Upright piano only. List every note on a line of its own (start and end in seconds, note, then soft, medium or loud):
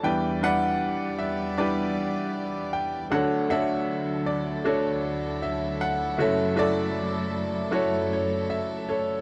0.03 3.07 E2 medium
0.03 3.07 E3 medium
0.03 0.39 G3 medium
0.03 0.39 D4 medium
0.03 0.40 E4 medium
0.03 0.40 B4 medium
0.03 0.44 D5 medium
0.03 0.43 G5 loud
0.41 1.49 G3 medium
0.41 1.50 D4 medium
0.41 1.50 E4 medium
0.41 1.50 B4 medium
0.41 1.57 D5 medium
0.41 1.22 F#5 loud
1.19 1.54 E5 medium
1.58 3.01 G3 medium
1.58 3.01 D4 medium
1.58 3.01 E4 medium
1.58 3.08 G4 medium
1.58 3.02 B4 medium
1.58 2.69 D5 medium
2.73 3.12 G5 medium
3.10 6.15 D2 medium
3.10 6.15 D3 medium
3.10 3.47 A3 medium
3.10 3.47 D4 medium
3.10 3.47 F#4 medium
3.10 3.51 A4 medium
3.10 3.47 C#5 medium
3.10 3.47 F#5 medium
3.49 4.57 A3 medium
3.49 4.57 D4 medium
3.49 4.57 F#4 medium
3.49 4.65 A4 medium
3.49 4.64 C#5 medium
3.49 4.29 E5 medium
3.49 4.57 F#5 medium
4.26 4.66 D5 medium
4.64 6.08 A3 medium
4.64 6.08 D4 medium
4.64 6.08 F#4 medium
4.64 6.15 A4 medium
4.64 6.08 C#5 medium
5.42 5.78 E5 medium
5.81 6.20 F#5 medium
6.17 9.21 F#1 medium
6.17 9.21 F#2 medium
6.17 6.54 A3 medium
6.17 6.54 E4 medium
6.17 6.54 F#4 medium
6.17 6.54 C#5 medium
6.17 6.55 E5 medium
6.21 6.58 A4 medium
6.55 7.63 A3 medium
6.55 7.64 E4 medium
6.55 7.64 F#4 medium
6.55 7.76 D5 loud
6.55 7.64 E5 medium
6.60 7.73 A4 medium
7.71 9.15 A3 medium
7.71 9.15 E4 medium
7.71 9.15 F#4 medium
7.71 8.88 A4 medium
7.71 8.12 C#5 medium
8.13 8.51 C#5 medium
8.50 8.85 E5 medium
8.89 9.21 A4 medium
8.89 9.21 C#5 medium